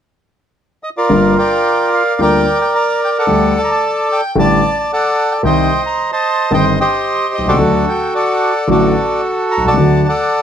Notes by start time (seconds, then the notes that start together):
0.83 D#5
0.97 F4 A#4 D5
1.09 G1 G2 D3 G3 A#3 F4
1.38 A#4 D5 G5
1.93 F5
2.19 D2 D3 G3 A#3 F4 A#4 D5 G5
2.62 G5
2.76 A#5
3.05 G5
3.19 A4 D5 F#5
3.27 D2 D3 G3 A3 G4
3.58 A5
3.64 A#5
3.72 A5
4.12 G5
4.36 A1 A2 D3 G3 A3 G4 D5 A5
4.80 A5
4.93 A4 D5 F#5
5.32 G5
5.43 C2 C3 D#3 G3 C4 G4 C5 D#5 G5
5.86 A#5
6.12 C5 D#5 A5
6.51 G1 G2 D#3 G3 C4 G4 C5 D#5 G5
6.80 G4 C5 D#5
7.34 D#5
7.38 B1
7.45 C2 F#4 A4 D5
7.52 C#2
7.59 D2 D3 F#3 A3 F#4
7.89 G5
8.15 A4 D5 F#5
8.67 A1 A2 D3 F#3 A3 F#4 A4 D5
9.51 A#5
9.58 B1
9.64 C2 D5 F#5 A5
9.72 C#2
9.77 D2 D3 F#3 A3 F#4
10.08 A4 D5 F#5